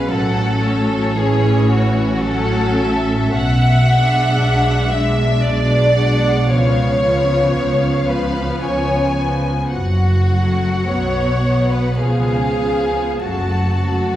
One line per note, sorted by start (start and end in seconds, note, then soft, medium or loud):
0.00 0.10 G#3 soft
0.00 0.11 C#4 soft
0.00 0.11 F5 soft
0.11 3.36 A1 soft
0.11 3.36 A2 soft
0.11 1.15 F#3 soft
0.11 1.15 C#4 soft
0.11 1.17 A4 medium
0.11 0.63 F#5 soft
0.63 2.23 C#5 soft
1.17 2.23 E3 soft
1.17 2.21 C#4 soft
1.17 1.70 G#4 medium
1.70 2.22 F#4 soft
2.21 3.36 F#3 medium
2.21 3.34 C#4 medium
2.21 3.35 A4 medium
2.21 2.79 F#5 medium
2.79 5.45 E5 soft
3.36 4.29 B1 medium
3.36 4.29 B2 medium
3.36 4.90 F#5 medium
3.89 4.91 G#3 soft
3.89 4.91 D4 soft
4.41 5.33 B1 soft
4.41 5.33 B2 medium
4.92 5.95 G#3 soft
4.92 5.95 D4 soft
4.92 5.45 E5 medium
5.44 6.37 B1 medium
5.44 6.37 B2 soft
5.44 6.49 D5 medium
5.44 5.96 D5 soft
5.97 6.48 G#3 soft
5.97 6.48 D4 soft
5.97 6.49 F#5 medium
6.49 7.42 C#2 medium
6.49 7.43 C#3 soft
6.49 7.01 F3 soft
6.49 7.01 B3 soft
6.49 8.08 C#5 medium
6.49 7.55 F5 soft
7.02 8.06 F3 soft
7.02 8.06 B3 soft
7.54 8.49 C#2 soft
7.54 8.50 C#3 soft
7.54 8.61 F5 soft
8.08 9.14 F3 soft
8.08 9.14 B3 soft
8.08 8.62 B4 medium
8.62 9.59 C#2 soft
8.62 9.59 C#3 soft
8.62 9.16 C#5 medium
8.62 9.73 G#5 soft
9.17 9.71 F3 soft
9.17 9.71 B3 soft
9.72 10.75 F#1 soft
9.72 10.76 F#2 soft
9.72 10.85 F#4 medium
9.72 11.97 F#5 soft
10.29 10.87 F#3 soft
10.29 10.87 A3 soft
10.88 11.88 B1 soft
10.88 11.88 B2 soft
10.88 11.44 F#3 soft
10.88 11.44 B3 soft
10.88 11.72 C#5 medium
11.45 12.00 F#3 soft
11.45 12.00 B3 soft
11.72 12.01 B4 soft
11.99 13.07 C#2 soft
11.99 13.07 C#3 soft
11.99 12.58 F3 soft
11.99 12.58 B3 soft
11.99 13.21 G#4 medium
11.99 13.22 F5 soft
12.59 13.20 F3 soft
12.59 13.20 B3 soft
13.21 14.16 F#1 soft
13.21 14.16 F#2 soft
13.21 13.83 F#3 soft
13.21 13.82 A3 soft
13.21 14.16 F#4 soft
13.21 14.16 A5 soft
13.84 14.16 F#3 soft
13.84 14.16 A3 soft